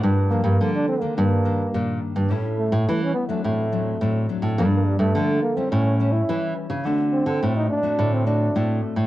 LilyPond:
<<
  \new Staff \with { instrumentName = "Trombone" } { \time 4/4 \key g \minor \tempo 4 = 106 r8 bes8. d'16 c'16 bes16 bes4. r8 | r8 a8. cis'16 b16 a16 a4. r8 | bes16 bes16 g16 a8. bes16 c'16 cis'8. e'8. r8 | r8 c'8. ees'16 d'8. c'16 d'4 r8 | }
  \new Staff \with { instrumentName = "Nylon-string guitar" } { \time 4/4 \key g \minor << { <d' f' bes'>8 <f bes d'>8 <f bes d'>8. <ees bes d'>8. <ees bes d'>16 r16 <ees bes d'>4 | <g cis' e'>8. r16 <g cis' e'>8. <fis c' d'>8. <fis c' d'>8 <fis c' d'>8 <fis c' d'>8 | <f bes d'>8. r16 <f bes d'>8. <g cis' e'>8. <g cis' e'>16 r16 <g cis' e'>8. r16 | <a c' fis'>8. r16 <a c' fis'>8. <a c' fis'>8. <a c' fis'>8 <a c' fis'>8. r16 | } \\ { g,4 d4 g,4 g,4 | a,4 e4 a,4 a,4 | g,4 d4 a,4 e4 | d4 a,4 d4 a,4 | } >> }
  \new Staff \with { instrumentName = "Nylon-string guitar" } { \clef bass \time 4/4 \key g \minor g,8. g,16 d8 r8 g,4 bes,8 r16 g,16 | a,8. a,16 e8 r8 a,4 a,8 r16 a,16 | g,8. g,16 d8 r8 a,4 e8 r16 cis16 | d8. d16 a,8 r8 a,4 a,8 r16 a,16 | }
>>